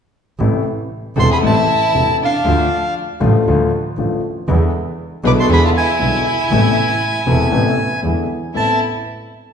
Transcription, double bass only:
0.39 0.61 A1 medium
1.17 1.38 E1 medium
1.43 1.64 A1 medium
1.93 2.15 E1 medium
2.45 2.66 D2 medium
3.21 3.43 A1 medium
3.47 3.68 D2 medium
3.97 4.18 A1 medium
4.48 4.69 E2 medium
5.24 5.45 B1 medium
5.49 5.71 E2 medium
6.00 6.21 B1 medium
6.51 6.72 A1 medium
7.27 7.48 E1 medium
7.52 7.74 A1 medium
8.04 8.25 E2 medium
8.56 8.77 A1 soft

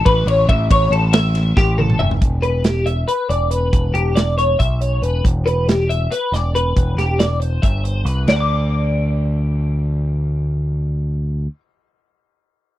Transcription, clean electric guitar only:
0.05 0.27 B4 medium
0.27 0.48 C#5 medium
0.49 0.70 E5 medium
0.71 0.92 C#5 loud
0.92 1.13 A4 medium
1.13 1.56 E5 medium
1.57 1.78 G4 medium
1.78 2.00 A4 medium
1.99 2.21 E5 medium
2.42 2.65 B4 medium
2.65 2.86 G4 medium
2.86 3.07 E5 medium
3.08 3.29 B4 medium
3.29 3.51 D5 medium
3.51 3.94 B4 medium
3.94 4.16 G4 medium
4.16 4.37 D5 medium
4.38 4.59 C#5 medium
4.59 4.81 E5 medium
4.81 5.02 C#5 medium
5.02 5.24 B4 medium
5.46 5.68 B4 medium
5.68 5.89 G4 medium
5.89 6.11 E5 medium
6.11 6.34 B4 medium
6.34 6.55 D5 medium
6.55 6.98 B4 medium
6.98 7.20 G4 medium
7.19 7.40 D5 medium
7.40 7.62 C5 medium
7.62 7.84 E5 medium
7.84 8.06 C5 medium
8.06 8.28 B4 medium
8.29 11.48 D5 medium
8.29 8.36 F#5 medium
8.36 8.40 A5 medium
8.40 11.60 D6 medium

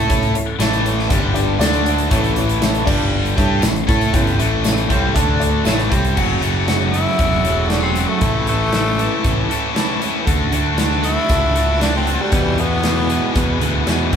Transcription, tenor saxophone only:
6.92 7.70 E4 loud
7.69 7.81 D4 medium
7.83 8.10 C4 medium
8.08 8.46 A3 medium
8.48 9.47 A3 loud
11.05 11.80 E4 loud
11.82 11.94 D4 medium
11.96 12.23 C4 medium
12.21 12.62 G3 medium
12.61 13.59 B3 loud

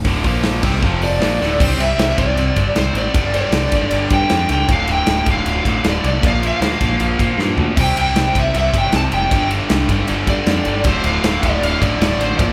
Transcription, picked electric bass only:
0.05 0.24 D1 medium
0.24 0.60 A#1 loud
0.63 0.81 C2 medium
0.83 1.19 F1 loud
1.19 1.38 A#1 loud
1.40 1.58 D1 medium
1.59 1.73 C2 loud
1.77 1.92 C2 loud
1.98 2.12 C2 medium
2.19 2.32 C2 medium
2.35 2.50 C2 medium
2.57 2.70 G1 medium
2.75 2.89 C2 medium
2.93 3.08 A1 medium
3.15 3.42 G1 loud
3.52 3.66 C2 medium
3.73 3.86 G1 medium
3.92 4.06 G1 loud
4.11 4.24 G2 loud
4.31 4.44 F2 medium
4.49 4.63 C#2 loud
4.69 4.82 D1 medium
4.88 5.01 D1 medium
5.08 5.21 D1 loud
5.26 5.40 D1 loud
5.46 5.59 D1 loud
5.65 5.79 A1 loud
5.84 5.98 D1 medium
6.04 6.17 C2 loud
6.23 6.50 A#1 loud
6.60 6.74 D2 medium
6.81 6.95 A#1 loud
7.00 7.14 A#1 loud
7.19 7.32 A#2 medium
7.38 7.51 G2 medium
7.57 7.71 D2 loud
7.78 7.91 C2 loud
7.96 8.09 C2 medium
8.14 8.28 C2 medium
8.35 8.49 C2 medium
8.55 8.68 C2 loud
8.74 8.87 G1 loud
8.93 9.06 C2 medium
9.13 9.26 F1 loud
9.32 9.58 G1 medium
9.71 9.84 C2 medium
9.88 10.02 G1 loud
10.09 10.22 G1 medium
10.27 10.40 G2 medium
10.46 10.60 F2 loud
10.65 10.85 G1 loud
10.85 10.98 D1 loud
11.04 11.18 D1 loud
11.23 11.37 D1 medium
11.44 11.57 D1 loud
11.62 11.75 D1 loud
11.82 11.95 A1 loud
11.99 12.13 D1 loud
12.17 12.32 A1 loud
12.39 12.53 A#1 loud

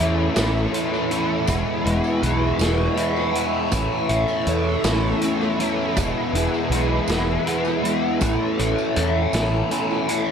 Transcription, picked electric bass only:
0.00 0.28 E2 medium
0.38 0.65 A1 medium
1.49 1.63 E1 loud
1.86 2.00 E1 medium
2.23 2.51 B1 medium
2.59 2.88 E1 medium
3.72 3.86 A1 loud
4.10 4.24 A1 medium
4.47 4.75 E2 medium
4.84 5.13 A1 medium
5.97 6.11 E1 loud
6.33 6.48 E1 medium
6.70 6.99 B1 medium
7.08 7.37 E1 medium
8.22 8.36 A1 loud
8.59 8.73 A1 medium
8.97 9.25 E2 medium
9.33 9.62 A1 medium

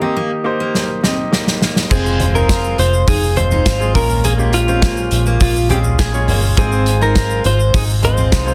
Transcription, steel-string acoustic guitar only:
0.02 0.16 C4 medium
0.17 0.30 A#3 medium
0.60 0.88 A#3 medium
1.04 1.18 C4 medium
1.63 1.76 A#3 medium
1.91 2.19 C4 loud
2.35 2.49 D#4 medium
2.50 2.78 F4 medium
2.79 2.93 F4 medium
3.08 3.22 D#4 medium
3.52 3.66 D#4 medium
3.67 4.08 F4 medium
4.25 4.52 A#3 loud
4.68 4.82 C4 medium
4.83 4.97 A#3 medium
5.27 5.54 A#3 medium
5.70 5.84 C4 medium
6.29 6.42 A#3 medium
6.58 6.85 C4 loud
7.01 7.15 D#4 medium
7.16 7.44 F4 medium
7.45 7.59 F4 medium
7.74 7.88 D#4 medium
8.18 8.31 C4 medium
8.32 8.54 D#4 medium

